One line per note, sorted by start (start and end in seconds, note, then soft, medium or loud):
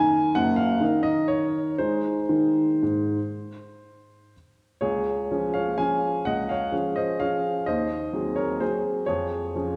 0.00 0.32 D#3 medium
0.00 0.32 D#4 medium
0.00 0.32 A#4 medium
0.00 0.35 G#5 loud
0.35 0.80 F#1 medium
0.35 0.80 F#2 medium
0.35 0.58 F#5 loud
0.56 1.04 F5 medium
0.80 1.74 D#3 medium
0.80 1.75 D#4 medium
0.80 1.75 A#4 medium
1.03 1.28 D#5 medium
1.28 1.78 C#5 medium
1.78 2.14 G#3 medium
1.78 2.20 D#4 soft
1.78 2.19 G#4 soft
1.78 4.32 C5 medium
2.29 2.66 D#3 medium
2.83 3.17 G#2 medium
4.81 5.28 C#2 medium
4.81 5.31 G#4 medium
4.81 5.53 C#5 medium
5.31 5.75 F3 soft
5.31 5.75 C#4 soft
5.31 5.75 G#4 medium
5.54 5.77 C#5 medium
5.54 5.76 F5 medium
5.78 6.21 F3 soft
5.78 6.21 C#4 soft
5.78 6.22 G#4 soft
5.78 6.22 F5 medium
5.78 6.25 G#5 medium
6.25 6.71 C#2 medium
6.25 6.48 D#5 medium
6.25 6.48 F#5 medium
6.49 6.94 C#5 medium
6.49 6.96 F5 medium
6.72 7.16 F3 soft
6.72 7.16 C#4 soft
6.72 7.16 G#4 soft
6.96 7.19 C5 medium
6.96 7.20 D#5 medium
7.20 7.64 F3 soft
7.20 7.64 C#4 soft
7.20 7.64 G#4 soft
7.20 7.64 C#5 medium
7.20 7.67 F5 medium
7.66 8.12 D#2 medium
7.66 8.33 C5 medium
7.66 8.37 D#5 medium
8.13 8.57 F#3 soft
8.13 8.57 C4 soft
8.13 8.58 G#4 soft
8.36 8.59 A#4 medium
8.36 8.60 C#5 medium
8.60 9.04 F#3 soft
8.60 9.05 C4 soft
8.60 9.05 G#4 medium
8.60 9.08 C5 medium
9.06 9.54 F2 medium
9.06 9.55 G#4 medium
9.06 9.76 C#5 medium
9.55 9.76 F3 soft
9.55 9.76 C#4 soft
9.55 9.76 G#4 soft